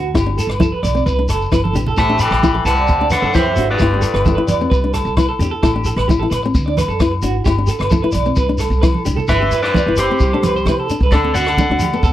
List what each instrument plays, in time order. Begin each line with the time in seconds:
Already playing: upright bass D2, nylon-string guitar D4, clean electric guitar F#4
0.14 upright bass G1, nylon-string guitar E4, clean electric guitar G4, kick, cross-stick, low agogo, shekere
0.26 nylon-string guitar D4
0.37 clean electric guitar A4, closed hi-hat, muted conga, shekere
0.47 upright bass G1, clean electric guitar B4, cross-stick, low agogo, shekere
0.60 nylon-string guitar E4, clean electric guitar A4, kick, high conga, shekere
0.72 clean electric guitar B4
0.83 upright bass B1, clean electric guitar D5, closed hi-hat, high conga, low agogo, shekere
0.95 nylon-string guitar C4, shekere
1.06 upright bass C2, clean electric guitar B4, kick, muted conga, shekere
1.19 nylon-string guitar D4
1.28 upright bass F#1, clean electric guitar A4, cross-stick, closed hi-hat, low agogo, shekere
1.42 shekere
1.52 upright bass G1, nylon-string guitar E4, clean electric guitar B4, kick, cross-stick, high conga, low agogo, shekere
1.64 clean electric guitar A4, high conga
1.73 upright bass A1, nylon-string guitar D4, clean electric guitar G4, closed hi-hat, low conga, shekere
1.86 clean electric guitar A4, low conga, shekere
1.97 upright bass A1, trombone C3, nylon-string guitar E4, clean electric guitar A4 E5 A5, kick, cross-stick, low agogo, shekere
2.09 nylon-string guitar D4, clean electric guitar G4
2.19 trombone E3, clean electric guitar A4 G5 B5, closed hi-hat, muted conga, shekere
2.31 upright bass A1, clean electric guitar A4, cross-stick, low agogo, shekere
2.42 nylon-string guitar E4, clean electric guitar G4, kick, high conga, shekere
2.54 nylon-string guitar E4, clean electric guitar A4
2.65 upright bass C2, trombone C3, clean electric guitar B4 F#5 A5, cross-stick, closed hi-hat, low agogo, shekere
2.76 clean electric guitar D5, shekere
2.88 upright bass D2, kick, muted conga, shekere
2.99 nylon-string guitar D4, clean electric guitar D5
3.10 clean electric guitar B4 D5 F#5, cross-stick, closed hi-hat, high conga, low agogo, shekere
3.14 trombone A2
3.22 upright bass F#2, clean electric guitar A4, shekere
3.33 trombone A2, nylon-string guitar E4, clean electric guitar B4 C5 E5, kick, cross-stick, muted conga, high conga, low agogo, shekere
3.45 clean electric guitar A4
3.56 upright bass G#1, nylon-string guitar D4, clean electric guitar F#4, closed hi-hat, shekere
3.70 trombone G2, clean electric guitar B4 D5
3.78 upright bass G1, nylon-string guitar E4, clean electric guitar G4, kick, cross-stick, muted conga, low agogo, shekere
3.94 nylon-string guitar D4
4.01 clean electric guitar A4, closed hi-hat, muted conga, shekere
4.14 upright bass G1, clean electric guitar B4, cross-stick, low agogo, shekere
4.25 nylon-string guitar E4, clean electric guitar A4, kick, high conga, shekere
4.35 nylon-string guitar E4, clean electric guitar B4
4.47 upright bass E2, clean electric guitar D5, closed hi-hat, high conga, low agogo, shekere
4.60 nylon-string guitar C4, shekere
4.70 upright bass C2, clean electric guitar B4, kick, muted conga, shekere
4.84 nylon-string guitar D4
4.94 clean electric guitar A4, cross-stick, closed hi-hat, low agogo, shekere
5.05 upright bass C2, shekere
5.17 nylon-string guitar E4, clean electric guitar B4, kick, cross-stick, muted conga, high conga, low agogo, shekere
5.29 clean electric guitar A4
5.39 upright bass E2, nylon-string guitar D4, clean electric guitar G4, closed hi-hat, shekere
5.51 clean electric guitar A4
5.63 upright bass A1, nylon-string guitar E4, clean electric guitar A4, kick, cross-stick, muted conga, low agogo, shekere
5.74 nylon-string guitar D4, clean electric guitar G4
5.85 clean electric guitar A4, closed hi-hat, muted conga, shekere
5.96 upright bass A1, clean electric guitar B4, cross-stick, low agogo, shekere
6.08 nylon-string guitar E4, clean electric guitar G4, kick, high conga, shekere
6.19 nylon-string guitar E4, clean electric guitar A4
6.30 upright bass A1, clean electric guitar B4, cross-stick, closed hi-hat, low agogo, shekere
6.43 nylon-string guitar C4, muted clean electric guitar stroke, shekere
6.55 upright bass D2, kick, muted conga, shekere
6.66 nylon-string guitar D4, clean electric guitar D5
6.77 clean electric guitar B4, cross-stick, closed hi-hat, high conga, low agogo, shekere
6.88 upright bass F#2, clean electric guitar A4, shekere
7.00 nylon-string guitar E4, clean electric guitar B4, kick, cross-stick, muted conga, high conga, low agogo, shekere
7.11 muted clean electric guitar stroke
7.22 upright bass G#1, nylon-string guitar D4, clean electric guitar F#4, closed hi-hat, shekere
7.44 upright bass G1, nylon-string guitar E4, clean electric guitar G4, kick, cross-stick, muted conga, low agogo, shekere
7.58 nylon-string guitar D4
7.67 clean electric guitar A4, closed hi-hat, muted conga, shekere
7.79 upright bass G1, clean electric guitar B4, cross-stick, low agogo, shekere
7.91 nylon-string guitar E4, clean electric guitar A4, kick, high conga, shekere
8.02 nylon-string guitar E4, clean electric guitar B4
8.12 upright bass B1, clean electric guitar D5, closed hi-hat, high conga, low agogo, shekere
8.25 nylon-string guitar C4, shekere
8.36 upright bass C2, clean electric guitar B4, kick, muted conga, shekere
8.49 nylon-string guitar D4
8.58 clean electric guitar A4, cross-stick, closed hi-hat, low agogo, shekere
8.70 upright bass C2, shekere
8.81 nylon-string guitar E4, clean electric guitar B4, kick, cross-stick, muted conga, high conga, low agogo, shekere
8.93 clean electric guitar A4, high conga
9.05 upright bass C2, nylon-string guitar D4, clean electric guitar G4, closed hi-hat, low conga, shekere
9.16 clean electric guitar A4, low conga, shekere
9.28 upright bass G1, nylon-string guitar E4, clean electric guitar B4 E5, kick, cross-stick, low agogo, shekere
9.40 nylon-string guitar D4, clean electric guitar G4
9.51 clean electric guitar B4, closed hi-hat, shekere
9.62 clean electric guitar B4 C5 D5, cross-stick, low agogo, shekere
9.74 nylon-string guitar E4, clean electric guitar D5, kick, high conga, shekere
9.86 upright bass G1, nylon-string guitar E4, clean electric guitar B4
9.97 clean electric guitar G4 C5, cross-stick, closed hi-hat, muted conga, low agogo, shekere
10.10 nylon-string guitar C4, clean electric guitar G4
10.19 upright bass C2, clean electric guitar G4, kick, muted conga, shekere
10.33 nylon-string guitar D4, clean electric guitar A4
10.42 upright bass C2, clean electric guitar B4, cross-stick, closed hi-hat, muted conga, high conga, low agogo, shekere
10.56 clean electric guitar C5, shekere
10.65 upright bass C3, nylon-string guitar E4, clean electric guitar B4, kick, cross-stick, high conga, low agogo, shekere
10.80 clean electric guitar A4
10.89 nylon-string guitar D4, closed hi-hat, shekere
11.00 upright bass C2, clean electric guitar B4, kick, shekere
11.11 upright bass D2, nylon-string guitar D4, clean electric guitar A4 D5, kick, cross-stick, muted conga, low agogo, shekere
11.24 nylon-string guitar C4
11.34 clean electric guitar F#4 D5 F#5, closed hi-hat, shekere
11.45 clean electric guitar A4, cross-stick, low agogo
11.58 nylon-string guitar D4, kick, high conga, shekere
11.70 upright bass D2, nylon-string guitar D4, clean electric guitar F#4
11.79 clean electric guitar G4, closed hi-hat, muted conga, high conga, low agogo, shekere
11.93 nylon-string guitar B3, clean electric guitar A4, shekere
12.03 upright bass E2, clean electric guitar A4, kick, muted conga, shekere